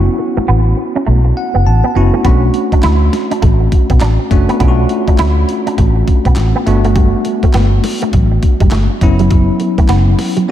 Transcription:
Already playing: tine electric piano B3 C#4 E4 F#4
0.19 muted clean electric guitar stroke
0.37 clean electric guitar A3, muted fingered electric bass stroke
0.48 fingered electric bass A1, clean electric guitar B3
0.77 muted clean electric guitar stroke
0.95 clean electric guitar C#4
1.06 fingered electric bass B1, clean electric guitar A3
1.25 muted clean electric guitar stroke
1.37 tine electric piano F#5
1.54 fingered electric bass F#1, clean electric guitar B3
1.66 fingered electric bass A1, tine electric piano A5
1.84 clean electric guitar B3
1.95 fingered electric bass F#1, tine electric piano B3 C#4 E4 F#4, muted clean electric guitar stroke
2.13 clean electric guitar A3
2.24 fingered electric bass B1, tine electric piano A3 C#4 D4 F#4, clean electric guitar B3, kick, closed hi-hat
2.54 muted clean electric guitar stroke, closed hi-hat
2.72 clean electric guitar D4, muted fingered electric bass stroke, kick, closed hi-hat
2.83 fingered electric bass D2, clean electric guitar E4, snare, clap, closed hi-hat
3.13 muted clean electric guitar stroke, snare, closed hi-hat
3.31 clean electric guitar D4, closed hi-hat
3.42 fingered electric bass A1, clean electric guitar A3, kick, closed hi-hat
3.60 muted clean electric guitar stroke
3.72 kick, closed hi-hat
3.90 fingered electric bass B1, clean electric guitar B3, kick, closed hi-hat
4.00 fingered electric bass A1, clean electric guitar D4, snare, clap, closed hi-hat
4.19 muted clean electric guitar stroke
4.31 fingered electric bass F#1, tine electric piano A3 C#4 D4 F#4, kick, closed hi-hat
4.49 clean electric guitar B3, closed hi-hat
4.60 fingered electric bass B1, tine electric piano A3 C#4 D4 F4, clean electric guitar B3, kick, closed hi-hat
4.68 tine electric piano F#4
4.89 muted clean electric guitar stroke, closed hi-hat
5.08 clean electric guitar D4, muted fingered electric bass stroke, kick, closed hi-hat
5.18 fingered electric bass D2, clean electric guitar E4, snare, clap, closed hi-hat
5.48 muted clean electric guitar stroke, closed hi-hat
5.66 clean electric guitar D4, closed hi-hat
5.78 fingered electric bass A1, clean electric guitar A3, kick, closed hi-hat
5.96 muted clean electric guitar stroke
6.08 kick, closed hi-hat
6.25 fingered electric bass B1, clean electric guitar B3, kick, closed hi-hat
6.36 fingered electric bass A1, snare, clap, closed hi-hat
6.55 clean electric guitar B3
6.66 fingered electric bass G1, tine electric piano A3 B3 D4 F#4, muted clean electric guitar stroke, closed hi-hat
6.84 clean electric guitar A3, closed hi-hat
6.96 clean electric guitar G3, kick, closed hi-hat
7.25 muted clean electric guitar stroke, closed hi-hat
7.43 clean electric guitar A3, muted fingered electric bass stroke, kick, closed hi-hat
7.53 fingered electric bass G1, clean electric guitar B3, snare, clap, closed hi-hat
7.84 muted clean electric guitar stroke, snare, open hi-hat
8.02 clean electric guitar A3, closed hi-hat
8.13 fingered electric bass A1, clean electric guitar F#3, kick, closed hi-hat
8.32 muted clean electric guitar stroke
8.43 kick, closed hi-hat
8.60 fingered electric bass F#1, clean electric guitar G3, kick, closed hi-hat
8.71 fingered electric bass G1, clean electric guitar A3, snare, clap, closed hi-hat
8.90 muted clean electric guitar stroke
9.01 fingered electric bass F#1, tine electric piano F#3 B3 C#4 E4, kick, closed hi-hat
9.19 clean electric guitar F#3, closed hi-hat
9.30 clean electric guitar F#3, kick, closed hi-hat
9.60 muted clean electric guitar stroke, closed hi-hat
9.78 clean electric guitar A3, muted fingered electric bass stroke, kick, closed hi-hat
9.88 fingered electric bass F#1, clean electric guitar B3, snare, clap, closed hi-hat
10.19 muted clean electric guitar stroke, snare, open hi-hat
10.36 clean electric guitar F#3, closed hi-hat

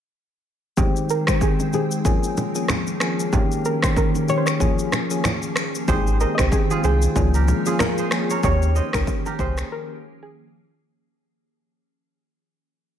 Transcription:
0.77 synth keys D#3 G#3 C4 G4, ambient pad D#3 G#3 C4 G5, kick, low conga, shaker
0.96 shaker
1.10 synth pluck A#4, shaker
1.27 synth keys D#3 G#3 C4 G4, synth pluck C5, finger snap, kick, cross-stick, low bongo, shaker
1.41 synth pluck G#4, kick, high bongo, shaker
1.60 high bongo, shaker
1.73 synth keys D#3 G#3 C4 G4, synth pluck G#4, low bongo, shaker
1.91 shaker
2.05 synth keys F3 A#3 C#4 G#4, ambient pad F3 A#3 C#4 G#4, kick, low conga, shaker
2.23 shaker
2.37 high bongo, low bongo, shaker
2.55 synth keys F3 A#3 C#4 G#4, shaker
2.68 finger snap, cross-stick, high bongo, low conga, shaker
2.87 shaker
3.00 synth keys F3 A#3 C#4 G#4, finger snap, cross-stick, shaker
3.20 shaker
3.32 synth keys D#3 A#3 C#4 G4, ambient pad D#3 A#3 G4, kick, low conga, shaker
3.52 shaker
3.65 synth pluck A#4, shaker
3.83 synth keys D#3 A#3 C#4 G4, synth pluck C5, finger snap, kick, cross-stick, low bongo, shaker
3.96 synth pluck A#4, kick, high bongo, shaker
4.15 high bongo, shaker
4.28 synth keys D#3 A#3 C#4 G4, synth pluck C#5, low bongo, shaker
4.38 synth pluck C5
4.46 synth pluck C#5, finger snap, cross-stick, shaker
4.60 synth keys F3 A#3 C#4 G#4, ambient pad F3 A#3 G#4, kick, low conga, shaker
4.79 shaker
4.92 finger snap, cross-stick, high bongo, low bongo, shaker
5.10 synth keys F3 A#3 C#4 G#4, shaker
5.24 finger snap, cross-stick, high bongo, low conga, shaker
5.43 shaker
5.56 finger snap, cross-stick, shaker
5.75 shaker
5.88 sub bass G#1, synth keys D#3 G#3 C4 G4, ambient pad D#3 G#3 C4 G5, kora G#4 C5, kick, low conga, shaker
6.07 shaker
6.20 synth pluck A#4, kora C5 D#5, shaker
6.35 sub bass C2, synth keys D#3 G#3 C4 G4, synth pluck D#5, kick, cross-stick
6.39 synth pluck C5, finger snap, low bongo, shaker
6.52 synth pluck G#4, kick, high bongo, shaker
6.70 kora F4 G#4, high bongo, shaker
6.83 sub bass C2, synth keys D#3 G#3 C4 G4, kora G#4 C5, synth pluck G#4, low bongo, shaker
7.02 shaker
7.15 sub bass C#2, synth keys F3 A#3 C#4 G#4, ambient pad F3 A#3 C#4 G#4, kick, low conga, shaker
7.34 kora G4 A#4, shaker
7.48 high bongo, low bongo, shaker
7.66 synth keys F3 A#3 C#4 G#4, kora F4 G#4, shaker
7.79 synth pluck A#4, finger snap, cross-stick, high bongo, low conga, shaker
7.98 kora G#4 C5, shaker
8.11 synth keys F3 A#3 C#4 G#4, finger snap, cross-stick, shaker
8.30 kora A#4 C#5, shaker
8.43 sub bass D#2, synth keys D#3 A#3 C#4 G4, ambient pad D#3 G4, kora A#4 C#5, synth pluck C#5, kick, low conga, shaker
8.62 shaker
8.76 kora C5 D#5, shaker
8.93 sub bass C#2, synth keys D#3 A#3 C#4 G4, synth pluck A#4, finger snap, kick, cross-stick, low bongo, shaker
9.07 kick, high bongo, shaker
9.26 kora G4 A#4, high bongo, shaker
9.39 sub bass C2, synth keys D#3 A#3 C#4 G4, kora G#4 C5, synth pluck C5, kick, low bongo, shaker
9.58 finger snap, cross-stick, shaker
9.71 ambient pad F3 A#3 C#4 G#4, synth pluck A#4
10.23 synth pluck G#4

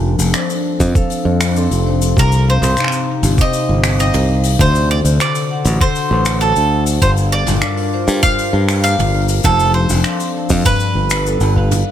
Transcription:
Already playing: fingered electric bass F1, harp D3 F3 A#3 D4 G4, ambient pad F3 C4 D4 A4
0.19 fingered electric bass F1, open hi-hat, cabasa
0.34 harp D4, vibraphone C5, finger snap, cabasa
0.50 open hi-hat, cabasa
0.80 fingered electric bass F2, kick, open hi-hat, cabasa
0.95 harp A4, vibraphone F5, kick, cabasa
1.10 open hi-hat, cabasa
1.25 fingered electric bass F2
1.40 finger snap, open hi-hat, cabasa
1.56 harp C4 D4 A4, vibraphone C6, cabasa
1.71 fingered electric bass F1, open hi-hat, cabasa
1.87 vibraphone C5
2.01 open hi-hat, cabasa
2.17 fingered electric bass C2, harp C3, ambient pad C3 D#4 G4, mandolin A#4, kick, cabasa
2.32 open hi-hat, cabasa
2.48 mandolin C5, vibraphone F5
2.62 fingered electric bass C2, mid tom, open hi-hat, cabasa
2.77 harp D#4, finger snap, cabasa
2.80 finger snap
2.84 finger snap
2.88 finger snap
2.92 open hi-hat, cabasa
3.23 fingered electric bass G1, open hi-hat, cabasa
3.38 harp G4, vibraphone C5, mandolin D#5, kick, cabasa
3.53 open hi-hat, cabasa
3.69 fingered electric bass G1
3.84 finger snap, open hi-hat, cabasa
3.99 harp C4 D#4 G4, mandolin D#5, vibraphone F5, cabasa
4.14 fingered electric bass C2, mid tom, open hi-hat, cabasa
4.43 open hi-hat, cabasa
4.59 fingered electric bass D2, harp D3, ambient pad D3 D4 F#4 A4, mandolin C5, kick, cabasa
4.75 open hi-hat, cabasa
4.91 vibraphone C5, mandolin D5
5.04 fingered electric bass D2, open hi-hat, cabasa
5.20 harp F#4, mandolin D5, finger snap, cabasa
5.35 open hi-hat, cabasa
5.51 vibraphone F#5
5.64 fingered electric bass A1, open hi-hat, cabasa
5.81 harp A4, mandolin C5, kick, cabasa
5.95 open hi-hat, cabasa
6.11 fingered electric bass A1
6.25 finger snap, open hi-hat, cabasa
6.41 harp D4 F#4 A4, mandolin A4, vibraphone C5, cabasa
6.56 fingered electric bass D2, open hi-hat, cabasa
6.86 open hi-hat, cabasa
7.01 fingered electric bass G1, harp G2, ambient pad G3 F4 A#4, mandolin C5, vibraphone F5, kick, cabasa
7.16 open hi-hat, cabasa
7.32 mandolin D5
7.46 fingered electric bass G1, mid tom, open hi-hat, cabasa
7.49 mid tom
7.51 mid tom
7.54 mid tom
7.56 mid tom
7.59 harp D4, finger snap, mid tom, cabasa
7.77 open hi-hat
7.94 vibraphone C5
8.08 fingered electric bass G2, open hi-hat, cabasa
8.23 harp G4, mandolin F5, kick, cabasa
8.38 open hi-hat, cabasa
8.53 fingered electric bass G2, vibraphone F5
8.68 finger snap, open hi-hat, cabasa
8.84 harp A#3 D4 G4, mandolin F5, cabasa
8.99 fingered electric bass G1, mid tom, open hi-hat, cabasa
9.06 open hi-hat
9.14 open hi-hat
9.21 open hi-hat
9.28 open hi-hat, cabasa
9.44 fingered electric bass F1, ambient pad F3 C4 A4, harp F3, mandolin A4, vibraphone C5, kick, cabasa
9.59 open hi-hat, cabasa
9.74 mandolin C5
9.89 fingered electric bass F1, open hi-hat, cabasa
10.04 harp D4, vibraphone F5, finger snap, cabasa
10.19 open hi-hat, cabasa
10.49 fingered electric bass F2, kick, open hi-hat, cabasa
10.65 harp G2, ambient pad G3 A4 B4, mandolin B4, kick, cabasa
10.80 cabasa
10.95 fingered electric bass G1, vibraphone B4
11.10 finger snap, open hi-hat, cabasa
11.26 harp B3 D4 A4, cabasa
11.40 fingered electric bass G1, open hi-hat, cabasa
11.56 vibraphone F5, kick
11.71 mid tom, open hi-hat, cabasa
11.87 ambient pad C3 G3 D#4 C5

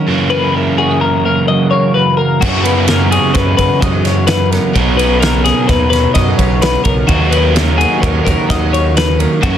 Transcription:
Already playing: clean electric guitar F#3 C#4 F#4
0.07 overdriven electric guitar F#2 C#3 E3 A#3 C#4, clean electric guitar F#2 F#4
0.30 clean electric guitar A#3 B4
0.55 clean electric guitar E4 A#4
0.78 clean electric guitar F#4 G#4
0.91 clean electric guitar G#4
1.01 clean electric guitar C#3 A#4
1.25 clean electric guitar A#3 A#4
1.48 clean electric guitar F#3 D#5
1.71 clean electric guitar A#3 C#5
1.94 clean electric guitar F#2 B4
2.17 clean electric guitar A#3 A#4
2.40 clean electric guitar F#2 F#4, overdriven electric guitar F#2 C#3 E3 A#3 C#4, analog synth bass F#2, kick, crash
2.45 overdriven electric guitar F#4
2.63 clean electric guitar B3 B4, ride
2.88 clean electric guitar C#4 A#4, snare, ride
3.00 clean electric guitar E4
3.11 clean electric guitar F#4 G#4, ride
3.34 analog synth bass F#2, clean electric guitar C#3 B4, kick, snare, ride
3.57 analog synth bass F#2, clean electric guitar B4, kick, ride
3.81 analog synth bass F#2, clean electric guitar F#3 D#5, kick, ride
4.04 clean electric guitar C#5, snare, ride
4.27 clean electric guitar F#2 B4, snare, ride
4.50 clean electric guitar B3 A#4, snare, ride
4.74 analog synth bass B1, overdriven electric guitar B2 F#3 B3 D#4, clean electric guitar B2 F#4, kick, ride
4.97 clean electric guitar B4, ride
5.02 clean electric guitar C#4
5.20 clean electric guitar D#4 A#4, snare, ride
5.44 clean electric guitar G#4 A#4, snare, ride
5.68 analog synth bass D#2, clean electric guitar F#2 B4, kick, snare, ride
5.90 clean electric guitar C#4 B4, snare, ride
6.14 analog synth bass F#2, clean electric guitar F#3 D#5, kick, snare, ride
6.37 analog synth bass B1, clean electric guitar C#4 C#5, kick, ride
6.61 clean electric guitar B2 B4, snare, ride
6.84 analog synth bass B1, clean electric guitar C#3 A#4, kick, ride
7.07 analog synth bass D#2, clean electric guitar D#3 F#4, overdriven electric guitar D#3 F#3 A#3, kick, ride
7.11 overdriven electric guitar D#4
7.31 clean electric guitar C#4 B4, ride
7.55 clean electric guitar D#4 A#4, snare, ride
7.77 clean electric guitar F#4 G#4, ride
8.00 analog synth bass D#2, clean electric guitar D#3 A#4, kick, ride
8.24 analog synth bass D#2, clean electric guitar C#4 A#4, kick, ride
8.47 analog synth bass D#2, clean electric guitar F#3 D#5, kick, ride
8.52 snare
8.70 clean electric guitar C#4 C#5, ride
8.94 clean electric guitar D#3 B4, snare, ride
9.19 clean electric guitar C#4 A#4, ride
9.42 overdriven electric guitar F#2 C#3 E3 A#3, clean electric guitar F#2 F#4, analog synth bass F#2, kick, ride
9.46 overdriven electric guitar C#4

